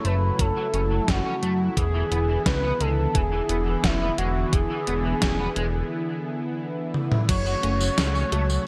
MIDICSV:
0, 0, Header, 1, 7, 480
1, 0, Start_track
1, 0, Tempo, 689655
1, 1233, Time_signature, 4, 2, 24, 8
1, 6036, End_track
2, 0, Start_track
2, 0, Title_t, "Analog synth lead"
2, 0, Program_c, 0, 81
2, 36, Note_on_c, 0, 71, 98
2, 276, Note_on_c, 0, 69, 102
2, 286, Note_off_c, 0, 71, 0
2, 755, Note_on_c, 0, 66, 98
2, 765, Note_off_c, 0, 69, 0
2, 1229, Note_off_c, 0, 66, 0
2, 1233, Note_on_c, 0, 68, 108
2, 1685, Note_off_c, 0, 68, 0
2, 1713, Note_on_c, 0, 71, 107
2, 1953, Note_on_c, 0, 69, 94
2, 1964, Note_off_c, 0, 71, 0
2, 2194, Note_on_c, 0, 68, 104
2, 2204, Note_off_c, 0, 69, 0
2, 2673, Note_on_c, 0, 64, 91
2, 2684, Note_off_c, 0, 68, 0
2, 2908, Note_off_c, 0, 64, 0
2, 2912, Note_on_c, 0, 66, 86
2, 3152, Note_on_c, 0, 68, 102
2, 3163, Note_off_c, 0, 66, 0
2, 4113, Note_off_c, 0, 68, 0
2, 5075, Note_on_c, 0, 73, 126
2, 6006, Note_off_c, 0, 73, 0
2, 6036, End_track
3, 0, Start_track
3, 0, Title_t, "Synth arpeggio sound"
3, 0, Program_c, 1, 84
3, 5074, Note_on_c, 1, 54, 86
3, 5251, Note_off_c, 1, 54, 0
3, 5313, Note_on_c, 1, 57, 80
3, 5541, Note_off_c, 1, 57, 0
3, 5554, Note_on_c, 1, 61, 103
3, 5730, Note_off_c, 1, 61, 0
3, 5794, Note_on_c, 1, 66, 78
3, 5900, Note_off_c, 1, 66, 0
3, 6036, End_track
4, 0, Start_track
4, 0, Title_t, "Analog synth pad"
4, 0, Program_c, 2, 89
4, 0, Note_on_c, 2, 49, 82
4, 0, Note_on_c, 2, 54, 73
4, 0, Note_on_c, 2, 57, 75
4, 0, Note_on_c, 2, 64, 92
4, 1206, Note_off_c, 2, 49, 0
4, 1206, Note_off_c, 2, 54, 0
4, 1206, Note_off_c, 2, 57, 0
4, 1232, Note_on_c, 2, 50, 81
4, 1232, Note_on_c, 2, 52, 74
4, 1232, Note_on_c, 2, 59, 76
4, 5044, Note_off_c, 2, 50, 0
4, 5044, Note_off_c, 2, 52, 0
4, 5044, Note_off_c, 2, 59, 0
4, 5046, Note_off_c, 2, 64, 0
4, 5072, Note_on_c, 2, 49, 83
4, 5072, Note_on_c, 2, 54, 73
4, 5072, Note_on_c, 2, 57, 73
4, 5072, Note_on_c, 2, 66, 90
4, 6036, Note_off_c, 2, 49, 0
4, 6036, Note_off_c, 2, 54, 0
4, 6036, Note_off_c, 2, 57, 0
4, 6036, Note_off_c, 2, 66, 0
4, 6036, End_track
5, 0, Start_track
5, 0, Title_t, "Clean electric guitar"
5, 0, Program_c, 3, 27
5, 32, Note_on_c, 3, 57, 98
5, 92, Note_off_c, 3, 57, 0
5, 273, Note_on_c, 3, 54, 99
5, 309, Note_off_c, 3, 54, 0
5, 393, Note_on_c, 3, 54, 101
5, 453, Note_off_c, 3, 54, 0
5, 513, Note_on_c, 3, 61, 74
5, 549, Note_off_c, 3, 61, 0
5, 632, Note_on_c, 3, 54, 73
5, 692, Note_off_c, 3, 54, 0
5, 752, Note_on_c, 3, 54, 80
5, 842, Note_off_c, 3, 54, 0
5, 871, Note_on_c, 3, 61, 100
5, 932, Note_off_c, 3, 61, 0
5, 992, Note_on_c, 3, 57, 97
5, 1052, Note_off_c, 3, 57, 0
5, 1231, Note_on_c, 3, 52, 97
5, 1268, Note_off_c, 3, 52, 0
5, 1352, Note_on_c, 3, 52, 101
5, 1412, Note_off_c, 3, 52, 0
5, 1472, Note_on_c, 3, 59, 72
5, 1508, Note_off_c, 3, 59, 0
5, 1592, Note_on_c, 3, 52, 77
5, 1652, Note_off_c, 3, 52, 0
5, 1712, Note_on_c, 3, 52, 81
5, 1802, Note_off_c, 3, 52, 0
5, 1831, Note_on_c, 3, 59, 99
5, 1892, Note_off_c, 3, 59, 0
5, 1951, Note_on_c, 3, 56, 100
5, 2012, Note_off_c, 3, 56, 0
5, 2191, Note_on_c, 3, 52, 96
5, 2228, Note_off_c, 3, 52, 0
5, 2310, Note_on_c, 3, 52, 102
5, 2371, Note_off_c, 3, 52, 0
5, 2430, Note_on_c, 3, 59, 74
5, 2468, Note_off_c, 3, 59, 0
5, 2550, Note_on_c, 3, 52, 75
5, 2611, Note_off_c, 3, 52, 0
5, 2669, Note_on_c, 3, 52, 81
5, 2761, Note_off_c, 3, 52, 0
5, 2790, Note_on_c, 3, 59, 100
5, 2851, Note_off_c, 3, 59, 0
5, 2911, Note_on_c, 3, 56, 98
5, 2972, Note_off_c, 3, 56, 0
5, 3150, Note_on_c, 3, 52, 96
5, 3188, Note_off_c, 3, 52, 0
5, 3272, Note_on_c, 3, 52, 102
5, 3332, Note_off_c, 3, 52, 0
5, 3392, Note_on_c, 3, 59, 75
5, 3428, Note_off_c, 3, 59, 0
5, 3511, Note_on_c, 3, 52, 74
5, 3572, Note_off_c, 3, 52, 0
5, 3632, Note_on_c, 3, 52, 79
5, 3722, Note_off_c, 3, 52, 0
5, 3752, Note_on_c, 3, 59, 102
5, 3812, Note_off_c, 3, 59, 0
5, 3871, Note_on_c, 3, 56, 100
5, 3932, Note_off_c, 3, 56, 0
5, 5072, Note_on_c, 3, 54, 102
5, 5108, Note_off_c, 3, 54, 0
5, 5192, Note_on_c, 3, 54, 105
5, 5252, Note_off_c, 3, 54, 0
5, 5311, Note_on_c, 3, 61, 73
5, 5348, Note_off_c, 3, 61, 0
5, 5431, Note_on_c, 3, 54, 74
5, 5492, Note_off_c, 3, 54, 0
5, 5551, Note_on_c, 3, 54, 82
5, 5642, Note_off_c, 3, 54, 0
5, 5671, Note_on_c, 3, 61, 100
5, 5732, Note_off_c, 3, 61, 0
5, 5792, Note_on_c, 3, 57, 101
5, 5852, Note_off_c, 3, 57, 0
5, 6036, End_track
6, 0, Start_track
6, 0, Title_t, "Analog synth bass"
6, 0, Program_c, 4, 38
6, 34, Note_on_c, 4, 30, 103
6, 219, Note_off_c, 4, 30, 0
6, 273, Note_on_c, 4, 30, 87
6, 366, Note_off_c, 4, 30, 0
6, 513, Note_on_c, 4, 30, 83
6, 698, Note_off_c, 4, 30, 0
6, 753, Note_on_c, 4, 30, 94
6, 846, Note_off_c, 4, 30, 0
6, 992, Note_on_c, 4, 42, 81
6, 1178, Note_off_c, 4, 42, 0
6, 1232, Note_on_c, 4, 28, 98
6, 1418, Note_off_c, 4, 28, 0
6, 1472, Note_on_c, 4, 28, 75
6, 1658, Note_off_c, 4, 28, 0
6, 1712, Note_on_c, 4, 37, 84
6, 1898, Note_off_c, 4, 37, 0
6, 1952, Note_on_c, 4, 37, 80
6, 2138, Note_off_c, 4, 37, 0
6, 2192, Note_on_c, 4, 28, 84
6, 2378, Note_off_c, 4, 28, 0
6, 2432, Note_on_c, 4, 28, 99
6, 2618, Note_off_c, 4, 28, 0
6, 2672, Note_on_c, 4, 28, 94
6, 2858, Note_off_c, 4, 28, 0
6, 2912, Note_on_c, 4, 28, 92
6, 3098, Note_off_c, 4, 28, 0
6, 3152, Note_on_c, 4, 28, 80
6, 3245, Note_off_c, 4, 28, 0
6, 3392, Note_on_c, 4, 28, 92
6, 3578, Note_off_c, 4, 28, 0
6, 3632, Note_on_c, 4, 28, 80
6, 3818, Note_off_c, 4, 28, 0
6, 3871, Note_on_c, 4, 28, 100
6, 4058, Note_off_c, 4, 28, 0
6, 5072, Note_on_c, 4, 30, 95
6, 5258, Note_off_c, 4, 30, 0
6, 5312, Note_on_c, 4, 30, 79
6, 5498, Note_off_c, 4, 30, 0
6, 5553, Note_on_c, 4, 37, 88
6, 5738, Note_off_c, 4, 37, 0
6, 5793, Note_on_c, 4, 37, 82
6, 5978, Note_off_c, 4, 37, 0
6, 6036, End_track
7, 0, Start_track
7, 0, Title_t, "Drums"
7, 34, Note_on_c, 9, 42, 64
7, 103, Note_off_c, 9, 42, 0
7, 273, Note_on_c, 9, 36, 118
7, 273, Note_on_c, 9, 42, 88
7, 342, Note_off_c, 9, 36, 0
7, 343, Note_off_c, 9, 42, 0
7, 513, Note_on_c, 9, 42, 62
7, 582, Note_off_c, 9, 42, 0
7, 753, Note_on_c, 9, 36, 110
7, 753, Note_on_c, 9, 38, 107
7, 753, Note_on_c, 9, 42, 82
7, 822, Note_off_c, 9, 36, 0
7, 822, Note_off_c, 9, 38, 0
7, 822, Note_off_c, 9, 42, 0
7, 993, Note_on_c, 9, 42, 64
7, 1063, Note_off_c, 9, 42, 0
7, 1232, Note_on_c, 9, 36, 112
7, 1234, Note_on_c, 9, 42, 88
7, 1302, Note_off_c, 9, 36, 0
7, 1303, Note_off_c, 9, 42, 0
7, 1473, Note_on_c, 9, 42, 63
7, 1543, Note_off_c, 9, 42, 0
7, 1712, Note_on_c, 9, 36, 112
7, 1713, Note_on_c, 9, 38, 113
7, 1713, Note_on_c, 9, 42, 91
7, 1781, Note_off_c, 9, 36, 0
7, 1782, Note_off_c, 9, 38, 0
7, 1782, Note_off_c, 9, 42, 0
7, 1953, Note_on_c, 9, 42, 66
7, 2022, Note_off_c, 9, 42, 0
7, 2192, Note_on_c, 9, 36, 111
7, 2192, Note_on_c, 9, 42, 88
7, 2261, Note_off_c, 9, 36, 0
7, 2262, Note_off_c, 9, 42, 0
7, 2431, Note_on_c, 9, 42, 62
7, 2501, Note_off_c, 9, 42, 0
7, 2671, Note_on_c, 9, 38, 115
7, 2671, Note_on_c, 9, 42, 91
7, 2672, Note_on_c, 9, 36, 109
7, 2741, Note_off_c, 9, 36, 0
7, 2741, Note_off_c, 9, 38, 0
7, 2741, Note_off_c, 9, 42, 0
7, 2911, Note_on_c, 9, 42, 65
7, 2981, Note_off_c, 9, 42, 0
7, 3152, Note_on_c, 9, 36, 113
7, 3152, Note_on_c, 9, 42, 97
7, 3221, Note_off_c, 9, 36, 0
7, 3222, Note_off_c, 9, 42, 0
7, 3391, Note_on_c, 9, 42, 66
7, 3461, Note_off_c, 9, 42, 0
7, 3632, Note_on_c, 9, 36, 112
7, 3632, Note_on_c, 9, 38, 113
7, 3632, Note_on_c, 9, 42, 95
7, 3701, Note_off_c, 9, 36, 0
7, 3701, Note_off_c, 9, 38, 0
7, 3701, Note_off_c, 9, 42, 0
7, 3871, Note_on_c, 9, 42, 69
7, 3941, Note_off_c, 9, 42, 0
7, 4833, Note_on_c, 9, 48, 59
7, 4902, Note_off_c, 9, 48, 0
7, 4953, Note_on_c, 9, 47, 78
7, 5022, Note_off_c, 9, 47, 0
7, 5073, Note_on_c, 9, 36, 118
7, 5073, Note_on_c, 9, 42, 100
7, 5073, Note_on_c, 9, 49, 102
7, 5073, Note_on_c, 9, 54, 50
7, 5142, Note_off_c, 9, 36, 0
7, 5143, Note_off_c, 9, 42, 0
7, 5143, Note_off_c, 9, 49, 0
7, 5143, Note_off_c, 9, 54, 0
7, 5192, Note_on_c, 9, 54, 30
7, 5262, Note_off_c, 9, 54, 0
7, 5313, Note_on_c, 9, 42, 67
7, 5383, Note_off_c, 9, 42, 0
7, 5432, Note_on_c, 9, 54, 59
7, 5502, Note_off_c, 9, 54, 0
7, 5552, Note_on_c, 9, 38, 117
7, 5552, Note_on_c, 9, 42, 99
7, 5552, Note_on_c, 9, 54, 53
7, 5622, Note_off_c, 9, 38, 0
7, 5622, Note_off_c, 9, 42, 0
7, 5622, Note_off_c, 9, 54, 0
7, 5673, Note_on_c, 9, 54, 30
7, 5742, Note_off_c, 9, 54, 0
7, 5793, Note_on_c, 9, 42, 71
7, 5862, Note_off_c, 9, 42, 0
7, 5913, Note_on_c, 9, 54, 58
7, 5983, Note_off_c, 9, 54, 0
7, 6036, End_track
0, 0, End_of_file